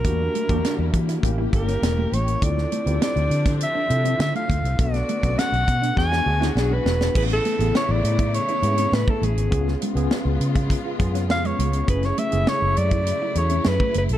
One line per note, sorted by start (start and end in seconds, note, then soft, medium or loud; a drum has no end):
0.00 1.27 A#4 medium
0.05 0.27 E2 medium
0.05 1.22 D3 medium
0.05 1.22 G3 medium
0.05 0.42 A#3 medium
0.05 2.40 A#3 medium
0.05 0.42 D4 medium
0.05 1.22 E4 medium
0.05 0.42 F#4 medium
0.05 0.42 G4 medium
0.05 kick loud
0.05 closed hi-hat medium
0.21 muted clean electric guitar stroke soft
0.35 0.44 A3 medium
0.35 closed hi-hat medium
0.49 0.60 E2 medium
0.49 1.22 A#3 medium
0.49 0.59 A#3 medium
0.49 1.23 D4 medium
0.49 1.24 F#4 medium
0.49 1.24 G4 medium
0.49 kick medium
0.49 closed hi-hat soft
0.64 0.73 D4 medium
0.64 snare loud
0.64 closed hi-hat medium
0.79 0.90 E2 medium
0.79 muted clean electric guitar stroke soft
0.93 1.16 E3 medium
0.93 kick medium
0.93 closed hi-hat medium
1.09 1.17 E4 medium
1.09 snare soft
1.09 closed hi-hat medium
1.23 1.46 A1 medium
1.23 2.41 C#3 medium
1.23 2.40 G3 medium
1.23 1.48 A#3 medium
1.23 1.48 C#4 medium
1.23 1.48 E4 medium
1.23 2.41 G4 medium
1.23 1.48 G4 loud
1.23 kick medium
1.23 closed hi-hat medium
1.38 1.47 E4 medium
1.53 1.76 G1 loud
1.53 2.27 A#3 medium
1.53 2.27 C#4 medium
1.53 2.27 E4 medium
1.53 2.27 G4 medium
1.53 2.15 A#4 medium
1.53 muted clean electric guitar stroke soft
1.53 kick medium
1.53 closed hi-hat medium
1.68 1.77 C#4 medium
1.68 snare soft
1.68 closed hi-hat soft
1.82 2.05 E1 medium
1.82 muted clean electric guitar stroke soft
1.82 snare loud
1.82 closed hi-hat medium
1.98 2.06 A3 medium
2.12 2.35 A1 medium
2.12 2.22 A3 medium
2.12 2.45 C#5 medium
2.12 closed hi-hat medium
2.28 closed hi-hat soft
2.42 2.65 D2 loud
2.42 5.94 D3 medium
2.42 4.77 F3 medium
2.42 2.79 C4 medium
2.42 4.76 C4 medium
2.42 4.77 D4 medium
2.42 2.79 E4 medium
2.42 2.79 F4 medium
2.42 2.79 A4 medium
2.42 3.02 D5 loud
2.42 kick loud
2.42 closed hi-hat medium
2.57 muted clean electric guitar stroke soft
2.57 snare soft
2.72 2.80 A3 medium
2.72 closed hi-hat medium
2.86 2.98 D2 medium
2.86 2.95 B3 medium
2.86 3.72 C4 medium
2.86 3.72 E4 medium
2.86 3.72 F4 medium
2.86 2.93 G4 medium
2.86 closed hi-hat soft
2.94 3.76 A4 medium
3.01 3.09 C4 medium
3.01 3.57 D5 loud
3.01 snare loud
3.01 closed hi-hat medium
3.16 3.27 D2 loud
3.16 muted clean electric guitar stroke soft
3.16 closed hi-hat soft
3.30 3.65 D3 medium
3.30 closed hi-hat medium
3.45 3.54 D4 medium
3.45 kick medium
3.45 snare soft
3.45 closed hi-hat medium
3.61 4.17 E5 loud
3.61 closed hi-hat medium
3.75 3.84 D4 medium
3.89 4.13 C3 medium
3.89 4.63 C4 medium
3.89 4.63 E4 medium
3.89 4.63 F4 medium
3.89 4.63 A4 medium
3.89 muted clean electric guitar stroke soft
3.89 closed hi-hat medium
4.04 4.13 C4 medium
4.04 closed hi-hat medium
4.19 4.31 D3 medium
4.19 4.34 E5 loud
4.19 muted clean electric guitar stroke soft
4.19 snare loud
4.19 closed hi-hat loud
4.35 4.43 A3 medium
4.35 4.82 F5 medium
4.35 closed hi-hat soft
4.50 4.61 D2 medium
4.50 4.58 A3 medium
4.50 kick medium
4.50 closed hi-hat medium
4.63 4.75 C2 medium
4.63 closed hi-hat medium
4.78 5.02 B1 loud
4.78 5.95 A3 medium
4.78 5.95 B3 medium
4.78 5.15 B3 medium
4.78 5.15 D4 medium
4.78 5.95 F#4 medium
4.78 5.15 F#4 medium
4.78 5.15 A4 medium
4.78 5.40 D5 loud
4.78 kick loud
4.78 closed hi-hat medium
4.94 muted clean electric guitar stroke soft
4.94 snare soft
4.94 closed hi-hat soft
5.09 5.17 A3 medium
5.09 closed hi-hat medium
5.21 5.34 B1 medium
5.21 5.32 B3 medium
5.21 5.96 C#4 medium
5.21 5.95 D4 medium
5.21 5.95 F#4 medium
5.21 5.97 A4 medium
5.21 kick medium
5.21 closed hi-hat soft
5.38 5.46 C#4 medium
5.38 5.97 F#5 loud
5.38 snare loud
5.38 closed hi-hat medium
5.52 5.64 B1 loud
5.52 muted clean electric guitar stroke soft
5.52 closed hi-hat soft
5.68 5.90 B2 loud
5.68 kick medium
5.68 closed hi-hat medium
5.82 5.90 D4 medium
5.82 closed hi-hat medium
5.96 6.20 E2 medium
5.96 7.14 E3 medium
5.96 7.14 G#3 medium
5.96 6.21 B3 medium
5.96 6.21 D4 medium
5.96 7.14 D4 medium
5.96 6.21 F#4 medium
5.96 7.14 F#4 medium
5.96 6.21 G#4 medium
5.96 6.53 G#5 loud
5.96 kick medium
5.96 snare soft
6.12 6.20 F#4 medium
6.12 snare medium
6.26 6.49 D2 medium
6.26 6.99 B3 medium
6.26 6.99 D4 medium
6.26 7.00 F#4 medium
6.26 7.00 G#4 medium
6.26 muted clean electric guitar stroke soft
6.41 6.50 E4 medium
6.41 snare medium
6.55 6.78 B1 medium
6.55 6.75 G#4 medium
6.55 muted clean electric guitar stroke soft
6.55 snare medium
6.71 6.79 C#4 medium
6.71 7.16 B4 medium
6.85 7.08 E1 medium
6.85 6.94 B3 medium
6.85 snare loud
7.01 snare medium
7.14 7.38 A1 loud
7.14 9.49 C#3 medium
7.14 9.49 E3 medium
7.14 9.49 A3 medium
7.14 7.51 B3 medium
7.14 7.52 C#4 medium
7.14 9.49 E4 medium
7.14 7.52 E4 medium
7.14 7.52 G#4 medium
7.14 7.24 B4 medium
7.14 kick loud
7.14 crash medium
7.30 7.73 A4 loud
7.30 muted clean electric guitar stroke soft
7.30 closed hi-hat soft
7.45 7.54 A3 medium
7.45 closed hi-hat medium
7.58 7.71 A1 medium
7.58 8.44 C#3 medium
7.58 8.44 B3 medium
7.58 7.68 B3 medium
7.58 8.45 E4 medium
7.58 8.45 G#4 medium
7.58 closed hi-hat soft
7.75 7.83 C#4 medium
7.75 7.93 C#5 loud
7.75 snare loud
7.89 8.00 A1 medium
7.89 8.37 D5 loud
7.89 muted clean electric guitar stroke soft
8.04 8.38 A2 loud
8.04 closed hi-hat medium
8.19 8.27 E4 medium
8.19 kick medium
8.19 closed hi-hat medium
8.34 8.96 C#5 loud
8.34 closed hi-hat medium
8.48 8.57 E4 medium
8.48 closed hi-hat soft
8.62 8.85 G#2 medium
8.62 9.36 B3 medium
8.62 9.36 C#4 medium
8.62 9.36 E4 medium
8.62 9.37 G#4 medium
8.62 muted clean electric guitar stroke soft
8.62 closed hi-hat medium
8.78 8.87 C#4 medium
8.78 snare soft
8.78 closed hi-hat medium
8.92 9.04 A2 loud
8.92 9.11 B4 medium
8.92 muted clean electric guitar stroke soft
8.92 snare loud
9.08 9.16 A3 medium
9.08 9.26 A4 medium
9.08 kick medium
9.22 9.33 A1 medium
9.22 9.32 A3 medium
9.22 9.83 G#4 medium
9.22 closed hi-hat medium
9.36 9.48 G#1 medium
9.36 closed hi-hat medium
9.51 9.75 C#2 loud
9.51 14.18 C#3 medium
9.51 11.86 G#3 medium
9.51 9.88 B3 medium
9.51 11.86 B3 medium
9.51 9.88 C#4 medium
9.51 9.88 F4 medium
9.51 11.86 F4 medium
9.51 9.88 G#4 medium
9.51 kick loud
9.51 closed hi-hat medium
9.68 muted clean electric guitar stroke soft
9.68 snare soft
9.82 9.91 G#3 medium
9.82 closed hi-hat medium
9.95 10.07 C#2 medium
9.95 10.81 B3 medium
9.95 10.05 B3 medium
9.95 10.81 C#4 medium
9.95 10.82 F4 medium
9.95 10.82 G#4 loud
9.95 closed hi-hat soft
10.11 10.20 C#4 medium
10.11 snare medium
10.25 10.37 C#2 loud
10.25 muted clean electric guitar stroke soft
10.40 10.74 C#3 loud
10.40 closed hi-hat medium
10.55 10.64 F4 medium
10.55 kick medium
10.55 closed hi-hat medium
10.70 kick medium
10.70 closed hi-hat medium
10.85 10.94 F4 medium
10.99 11.29 F#2 medium
10.99 11.72 B3 medium
10.99 11.73 C#4 medium
10.99 11.73 F4 medium
10.99 11.73 G#4 medium
10.99 muted clean electric guitar stroke soft
10.99 kick loud
10.99 closed hi-hat medium
11.15 11.23 C#4 medium
11.15 snare soft
11.15 closed hi-hat medium
11.29 11.52 F2 medium
11.29 11.48 F5 loud
11.29 muted clean electric guitar stroke soft
11.29 snare loud
11.44 11.53 G#3 medium
11.44 11.89 C#5 loud
11.44 closed hi-hat soft
11.59 11.82 C#2 medium
11.59 11.68 G#3 medium
11.59 closed hi-hat medium
11.73 closed hi-hat medium
11.87 12.11 F#1 loud
11.87 14.18 F#3 medium
11.87 12.24 A3 medium
11.87 14.18 A3 medium
11.87 12.24 C#4 medium
11.87 12.24 E4 medium
11.87 14.18 E4 medium
11.87 12.25 G#4 medium
11.87 12.07 B4 medium
11.87 kick loud
11.87 closed hi-hat medium
12.03 12.20 C#5 loud
12.03 muted clean electric guitar stroke soft
12.03 snare soft
12.03 closed hi-hat soft
12.18 12.26 A3 medium
12.18 12.50 E5 loud
12.18 closed hi-hat medium
12.31 12.44 F#1 medium
12.31 13.18 C#3 medium
12.31 12.38 G#3 medium
12.31 12.42 B3 medium
12.31 13.18 E4 medium
12.31 13.18 G#4 medium
12.31 closed hi-hat medium
12.37 13.21 A3 medium
12.47 12.56 C#4 medium
12.47 12.79 C#5 loud
12.47 snare loud
12.62 12.73 F#1 medium
12.62 muted clean electric guitar stroke soft
12.77 13.11 F#2 loud
12.77 13.40 D5 loud
12.77 closed hi-hat medium
12.91 13.00 E4 medium
12.91 kick medium
12.91 closed hi-hat medium
13.07 closed hi-hat medium
13.22 13.30 E4 medium
13.35 13.58 E2 loud
13.35 14.09 A3 medium
13.35 14.09 C#4 medium
13.35 14.09 E4 medium
13.35 14.10 G#4 medium
13.35 13.70 C#5 loud
13.35 muted clean electric guitar stroke soft
13.35 closed hi-hat medium
13.49 13.60 C#4 medium
13.49 closed hi-hat medium
13.65 13.77 F#2 loud
13.65 13.96 B4 loud
13.65 muted clean electric guitar stroke soft
13.65 snare loud
13.80 13.89 A3 medium
13.80 kick medium
13.94 14.07 F#1 medium
13.94 14.04 A3 medium
13.94 14.04 B4 medium
13.94 closed hi-hat medium
14.09 14.18 B1 medium
14.09 closed hi-hat medium
14.13 14.18 A4 medium